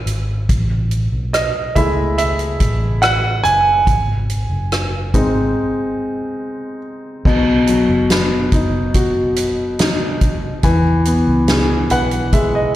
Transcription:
0.06 G#1, closed hi-hat
0.49 A1, kick, closed hi-hat
0.91 closed hi-hat
1.12 B1
1.33 D#5, cross-stick, closed hi-hat
1.75 C#2 G#3 A3 E4 E5, kick, closed hi-hat
2.18 E5, closed hi-hat
2.39 closed hi-hat
2.60 A1, kick, closed hi-hat
3.02 F#5, cross-stick, closed hi-hat
3.44 F#1 G#5, closed hi-hat
3.87 G#1, kick, closed hi-hat
4.29 closed hi-hat
4.50 F#1
4.72 cross-stick, closed hi-hat
5.14 G#1 G#3 C4 D#4, kick, closed hi-hat
7.25 B1 B2, kick, crash
7.67 F#3, closed hi-hat
7.89 F#1
8.10 B3, snare, closed hi-hat
8.52 F#1 D#4, kick, closed hi-hat
8.94 F#4, kick, closed hi-hat
9.36 closed hi-hat
9.79 D#4, snare, closed hi-hat
10.21 kick, closed hi-hat
10.63 E2 E3, kick, closed hi-hat
11.05 B3, closed hi-hat
11.27 C#2
11.48 G#4, snare, closed hi-hat
11.90 B1 B4 F#5, closed hi-hat
12.11 closed hi-hat
12.33 G#3 E5, kick, closed hi-hat
12.55 D#5

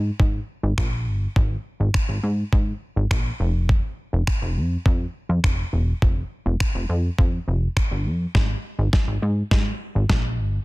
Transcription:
Already playing: G#2
0.20 G#2, kick
0.63 G#1
0.78 A#1, finger snap, kick
1.07 G1
1.36 G#1, kick
1.80 G#1
1.94 finger snap, kick
2.09 G#1
2.23 G#2
2.53 G#2, kick
2.96 G#1
3.11 A#1, finger snap, kick
3.40 F1
3.69 kick
4.13 F1
4.27 finger snap, kick
4.42 F1
4.57 F2
4.86 F2, kick
5.29 F2
5.44 F1, finger snap, kick
5.73 E1
6.02 F1, kick
6.46 F1
6.60 finger snap, kick
6.75 F1
6.89 F2
7.18 F2, kick
7.48 F1
7.77 G1, finger snap, kick
7.91 G1
8.06 F2
8.35 G#1, kick, snare
8.78 G#1
8.93 kick, snare
9.08 G#1
9.22 G#2
9.51 G#2, kick, snare
9.95 G#1
10.10 A#1, kick, snare
10.39 G1

